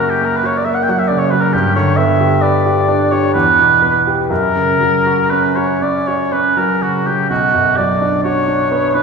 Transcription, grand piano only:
0.00 1.49 F#2 soft
0.00 1.10 C#3 soft
0.00 0.89 F#3 soft
0.00 0.12 A#3 soft
0.00 0.43 F#4 soft
0.21 0.57 A#3 soft
0.43 0.79 F#4 soft
0.66 1.01 A#3 soft
0.89 1.23 F#3 soft
1.10 1.45 C#3 soft
1.33 1.54 F#3 soft
1.54 3.31 G2 soft
1.76 2.11 D3 soft
1.98 2.34 B3 soft
2.20 2.56 G4 soft
2.43 2.79 B4 soft
2.66 3.02 G4 soft
2.88 3.25 D4 soft
3.12 3.35 G4 soft
3.35 4.28 E2 soft
3.59 3.97 B2 soft
3.82 4.21 B3 soft
4.07 4.31 G4 soft
4.30 7.26 F#2 soft
4.55 4.95 C#3 soft
4.81 5.21 F#3 soft
5.06 5.46 F#4 soft
5.32 5.72 C#4 soft
5.57 5.97 F#4 soft
5.82 6.22 C#4 soft
6.08 6.47 F#4 soft
6.32 6.72 C#4 soft
6.57 6.96 F#3 soft
6.82 7.21 C#3 soft
7.07 7.31 F#3 soft
7.30 9.03 B1 soft
7.54 7.92 F#2 soft
7.79 8.16 F#3 soft
8.01 8.39 D4 soft
8.25 8.62 F#4 soft
8.48 8.85 D4 soft
8.72 9.03 B3 soft
8.95 9.03 D4 soft

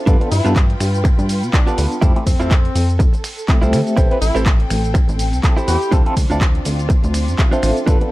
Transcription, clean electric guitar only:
0.06 0.20 D4 loud
0.06 0.21 F4 loud
0.06 0.21 G4 loud
0.06 0.21 B4 loud
0.31 muted clean electric guitar stroke soft
0.45 0.55 D4 medium
0.45 0.56 F4 medium
0.45 0.56 G4 medium
0.45 0.56 B4 loud
0.69 muted clean electric guitar stroke soft
1.04 muted clean electric guitar stroke loud
1.18 muted clean electric guitar stroke soft
1.67 1.84 D4 loud
1.67 1.85 F4 medium
1.67 1.85 G4 medium
1.67 1.85 B4 loud
2.01 2.16 E4 loud
2.01 2.16 F4 loud
2.01 2.16 A4 loud
2.01 2.17 C5 loud
2.26 muted clean electric guitar stroke soft
2.40 2.51 E4 loud
2.40 2.51 F4 medium
2.40 2.51 A4 medium
2.40 2.51 C5 loud
2.64 muted clean electric guitar stroke soft
2.99 muted clean electric guitar stroke loud
3.13 muted clean electric guitar stroke soft
3.62 3.79 E4 loud
3.62 3.80 F4 medium
3.62 3.80 A4 medium
3.62 3.80 C5 loud
3.97 4.11 E4 loud
3.97 4.11 G4 loud
3.97 4.11 A4 loud
3.97 4.12 C5 loud
4.21 muted clean electric guitar stroke soft
4.35 4.46 E4 medium
4.35 4.46 G4 medium
4.35 4.46 A4 medium
4.35 4.47 C5 loud
4.59 muted clean electric guitar stroke soft
4.94 muted clean electric guitar stroke loud
5.08 muted clean electric guitar stroke soft
5.57 5.74 E4 loud
5.57 5.75 G4 medium
5.57 5.75 A4 medium
5.57 5.75 C5 loud
5.91 6.06 D4 loud
5.91 6.06 F4 loud
5.91 6.06 A4 loud
5.91 6.07 C5 loud
6.16 muted clean electric guitar stroke soft
6.30 6.41 D4 medium
6.30 6.41 F4 medium
6.30 6.41 A4 medium
6.30 6.42 D5 loud
6.54 muted clean electric guitar stroke soft
6.89 muted clean electric guitar stroke loud
7.03 muted clean electric guitar stroke soft
7.51 7.69 D4 loud
7.51 7.70 F4 medium
7.51 7.70 A4 medium
7.51 7.70 C5 loud
7.86 8.01 D4 loud
7.86 8.01 F4 loud
7.86 8.01 G4 loud
7.86 8.02 B4 loud

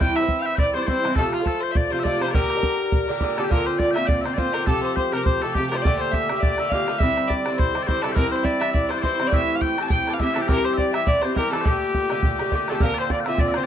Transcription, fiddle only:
0.00 0.17 G5 loud
0.16 0.40 E5 loud
0.40 0.47 F5 medium
0.45 0.57 E5 loud
0.58 0.73 D5 loud
0.75 0.87 C5 medium
0.88 1.15 C5 loud
1.16 1.32 A4 loud
1.33 1.47 F4 medium
1.45 1.62 A4 loud
1.60 1.73 C5 medium
1.71 1.86 D5 medium
1.71 1.76 E5 medium
1.86 2.05 C5 medium
1.86 1.92 D5 medium
2.03 2.20 D5 loud
2.22 2.32 C5 loud
2.32 3.17 A#4 loud
3.37 3.45 A4 medium
3.44 3.49 G4 medium
3.50 3.68 A#4 loud
3.66 3.78 C5 medium
3.79 3.93 D5 medium
3.94 4.08 E5 loud
4.07 4.26 D5 medium
4.24 4.33 C5 medium
4.34 4.39 D5 medium
4.38 4.55 C5 medium
4.53 4.66 A#4 medium
4.67 4.82 A4 loud
4.83 4.95 C5 medium
4.96 5.12 C5 medium
5.13 5.24 A#4 loud
5.24 5.43 C5 medium
5.42 5.54 A4 medium
5.54 5.69 G4 loud
5.70 5.77 A#4 medium
5.75 5.83 C5 medium
5.82 5.98 D5 loud
5.99 6.13 C5 medium
6.11 6.35 E5 medium
6.36 6.42 E5 medium
6.40 6.71 D5 loud
6.69 7.00 F5 loud
6.99 7.29 E5 loud
7.28 7.56 D5 medium
7.56 7.85 C5 medium
7.86 8.03 C5 loud
8.02 8.10 A4 medium
8.09 8.15 G4 medium
8.15 8.31 A#4 loud
8.31 8.41 C5 medium
8.43 8.61 D5 medium
8.43 8.46 E5 medium
8.60 8.74 E5 loud
8.73 8.86 D5 medium
8.86 9.02 C5 loud
8.86 8.91 D5 medium
9.03 9.29 C5 loud
9.27 9.35 D5 medium
9.34 9.57 E5 loud
9.55 9.63 F5 loud
9.61 9.84 G5 loud
9.82 9.89 A5 medium
9.90 10.15 G5 loud
10.13 10.20 F5 medium
10.21 10.38 E5 loud
10.36 10.42 A4 medium
10.42 10.48 G4 medium
10.49 10.66 A#4 loud
10.65 10.76 C5 loud
10.76 10.79 C5 medium
10.76 10.92 D5 medium
10.93 11.04 E5 loud
11.04 11.23 D5 loud
11.04 11.08 E5 medium
11.22 11.35 C5 medium
11.36 11.51 A#4 loud
11.52 11.66 A4 medium
11.65 12.52 G4 loud
12.71 12.80 A4 medium
12.78 12.85 G4 medium
12.83 12.98 A#4 loud
12.99 13.10 C5 medium
13.12 13.19 D5 medium
13.29 13.42 E5 medium
13.41 13.58 D5 medium
13.57 13.66 C5 loud

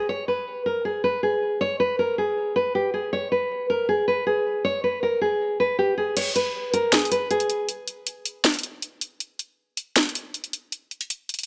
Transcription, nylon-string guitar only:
0.09 0.25 C#5 loud
0.28 0.64 B4 medium
0.66 0.82 A#4 medium
0.85 1.01 G#4 medium
1.04 1.20 B4 medium
1.23 1.59 G#4 medium
1.61 1.77 C#5 loud
1.80 1.96 B4 medium
1.99 2.15 A#4 medium
2.18 2.54 G#4 medium
2.56 2.72 B4 medium
2.75 2.91 G4 medium
2.94 3.10 G#4 medium
3.13 3.29 C#5 medium
3.32 3.67 B4 medium
3.70 3.86 A#4 medium
3.89 4.05 G#4 medium
4.08 4.24 B4 medium
4.27 4.62 G#4 medium
4.65 4.81 C#5 medium
4.84 5.00 B4 medium
5.03 5.19 A#4 medium
5.21 5.57 G#4 medium
5.60 5.76 B4 medium
5.79 5.95 G4 medium
5.98 6.14 G#4 medium
6.17 6.33 C#5 loud
6.36 6.71 B4 medium
6.74 6.90 A#4 medium
6.92 7.09 G#4 medium
7.11 7.28 B4 medium
7.31 7.66 G#4 medium

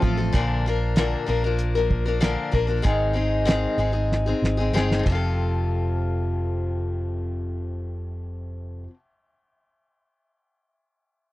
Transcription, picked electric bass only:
0.03 0.29 A1 medium
0.34 1.14 A#1 medium
1.28 2.35 A#1 medium
2.53 2.80 A#1 medium
2.85 3.66 G#1 medium
3.78 4.32 G#1 medium
4.42 4.71 G#1 medium
4.73 5.02 G1 medium
5.06 8.86 F1 medium

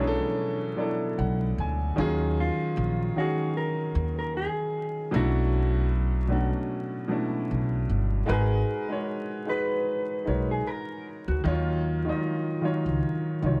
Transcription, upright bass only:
0.00 0.18 B1 loud
1.19 1.51 B1 medium
1.58 1.91 D2 medium
1.98 2.49 D#2 loud
2.77 3.09 A#1 loud
3.95 4.46 D#2 medium
5.14 6.50 B1 loud
7.51 7.83 B1 medium
7.89 8.22 G1 medium
8.29 8.62 G#1 loud
10.27 10.60 B1 medium
11.28 11.42 D2 medium
11.45 12.11 D#2 loud
12.86 13.00 C#2 medium
13.42 13.60 C2 medium

